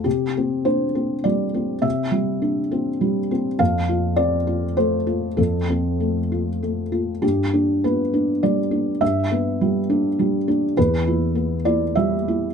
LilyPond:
\new Staff \with { instrumentName = "Felt piano" } { \time 3/4 \key c \major \tempo 4 = 101 << { g'4 c''4 d''4 | e''2~ e''8 r8 | f''4 d''4 c''4 | a'2 r4 |
g'4 b'4 d''4 | e''2~ e''8 r8 | b'4. d''8 e''4 | } \\ { c8 c'8 d'8 c'8 g8 c'8 | c8 g8 d'8 c'8 g8 c'8 | f,8 f'8 c'8 f'8 a8 f'8 | f,8 c'8 a8 f'8 a8 f'8 |
g,8 d'8 b8 d'8 g8 d'8 | g,8 b8 g8 d'8 g8 d'8 | e,8 e'8 b8 e'8 g8 e'8 | } >> }